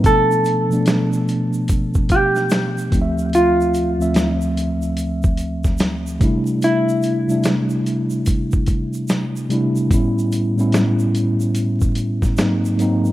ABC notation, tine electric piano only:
X:1
M:4/4
L:1/16
Q:"Swing 16ths" 1/4=73
K:Ddor
V:1 name="Tine electric piano"
[B,,F,A,B,]3 [B,,F,A,B,D]6- [B,,F,A,B,D] z4 [D,,F,A,C_E=e]2- | [D,,F,A,C_E=e]2 z [D,,F,A,Ce]6- [D,,F,A,Ce] z4 [C,G,A,D=E]2- | [C,G,A,DE]2 z [C,G,A,DE]6- [C,G,A,DE] z4 [C,G,A,DE]2 | [A,,G,B,^CE]3 [A,,G,B,CE]6- [A,,G,B,CE] z2 [^G,,^F,^A,^B,^D]2 [G,,F,A,B,D]2 |]